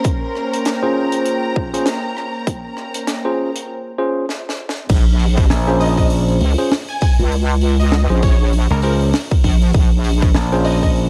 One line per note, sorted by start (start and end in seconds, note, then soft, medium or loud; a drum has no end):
0.00 3.64 A#3 medium
0.00 3.64 C#4 medium
0.00 3.68 C#4 medium
0.00 3.68 A#4 medium
0.00 3.64 C5 medium
0.00 0.46 C6 medium
0.04 3.65 G5 medium
0.04 kick loud
0.04 closed hi-hat medium
0.28 3.68 A#5 medium
0.35 cross-stick soft
0.53 closed hi-hat medium
0.65 snare loud
0.65 closed hi-hat medium
0.82 1.69 C#4 medium
0.82 1.69 F4 medium
0.82 1.69 G#4 medium
0.82 1.69 C5 medium
1.12 closed hi-hat medium
1.25 closed hi-hat medium
1.56 kick loud
1.74 1.87 C#4 medium
1.74 1.87 F4 medium
1.74 1.87 G#4 medium
1.74 1.87 C5 medium
1.74 closed hi-hat medium
1.86 snare loud
1.86 closed hi-hat medium
2.17 cross-stick medium
2.47 kick loud
2.47 closed hi-hat medium
2.77 cross-stick medium
2.94 closed hi-hat medium
3.07 snare loud
3.07 closed hi-hat medium
3.25 3.49 C#4 medium
3.25 3.49 F4 medium
3.25 3.49 G#4 medium
3.25 3.49 C5 medium
3.56 closed hi-hat medium
3.98 4.24 C#4 medium
3.98 4.24 F4 medium
3.98 4.24 G#4 medium
3.98 4.24 C5 medium
4.29 snare medium
4.49 snare medium
4.69 snare loud
4.89 5.48 A#1 loud
4.89 kick loud
4.89 open hi-hat medium
4.89 crash loud
5.07 open hi-hat soft
5.19 open hi-hat medium
5.37 kick loud
5.37 cross-stick soft
5.37 open hi-hat medium
5.39 cross-stick soft
5.43 cross-stick soft
5.45 cross-stick soft
5.47 6.39 A#1 loud
5.47 cross-stick soft
5.47 snare loud
5.47 open hi-hat medium
5.67 6.54 C#4 medium
5.67 6.54 F4 medium
5.67 6.54 G#4 medium
5.67 6.54 C5 medium
5.67 cross-stick medium
5.80 5.91 D#5 medium
5.80 open hi-hat medium
5.97 6.06 D#5 medium
5.97 kick medium
5.97 open hi-hat medium
6.10 open hi-hat medium
6.28 open hi-hat soft
6.41 6.56 C#2 loud
6.41 open hi-hat medium
6.58 6.72 C#4 medium
6.58 6.72 F4 medium
6.58 6.72 G#4 medium
6.58 6.72 C5 medium
6.58 open hi-hat soft
6.71 snare loud
6.71 open hi-hat medium
6.88 6.97 G#5 medium
6.88 open hi-hat soft
7.01 7.13 G#5 medium
7.01 kick loud
7.01 open hi-hat medium
7.19 8.07 C#2 medium
7.19 cross-stick soft
7.19 open hi-hat soft
7.32 open hi-hat medium
7.49 open hi-hat soft
7.61 open hi-hat medium
7.80 8.20 D#5 medium
7.80 cross-stick soft
7.80 open hi-hat soft
7.92 snare loud
7.92 open hi-hat medium
8.09 8.68 A#1 loud
8.09 8.34 C#4 medium
8.09 8.34 F4 medium
8.09 8.34 G#4 medium
8.09 8.34 C5 medium
8.09 cross-stick medium
8.09 open hi-hat soft
8.22 8.50 C#5 loud
8.22 kick loud
8.22 open hi-hat medium
8.53 open hi-hat medium
8.70 9.12 C#2 medium
8.70 8.79 A#4 medium
8.70 open hi-hat soft
8.82 9.09 C#4 medium
8.82 9.09 F4 medium
8.82 9.09 G#4 medium
8.82 8.95 A#4 medium
8.82 9.09 C5 medium
8.82 open hi-hat medium
9.01 open hi-hat soft
9.13 snare loud
9.13 open hi-hat medium
9.31 kick loud
9.31 open hi-hat soft
9.44 9.72 A#1 loud
9.44 kick medium
9.44 open hi-hat medium
9.62 open hi-hat soft
9.73 10.33 A#1 medium
9.73 kick loud
9.73 open hi-hat medium
9.92 open hi-hat soft
9.98 open hi-hat soft
10.04 open hi-hat medium
10.13 open hi-hat soft
10.22 kick loud
10.22 cross-stick soft
10.22 open hi-hat soft
10.34 11.10 A#1 loud
10.34 snare loud
10.34 open hi-hat medium
10.52 11.10 C#4 medium
10.52 11.10 F4 medium
10.52 11.10 G#4 medium
10.52 11.10 C5 medium
10.52 cross-stick soft
10.52 open hi-hat soft
10.55 cross-stick soft
10.61 cross-stick soft
10.61 open hi-hat medium
10.65 10.76 D#5 medium
10.65 cross-stick soft
10.71 cross-stick soft
10.75 cross-stick soft
10.83 10.91 D#5 medium
10.83 kick medium
10.83 open hi-hat soft
10.96 open hi-hat medium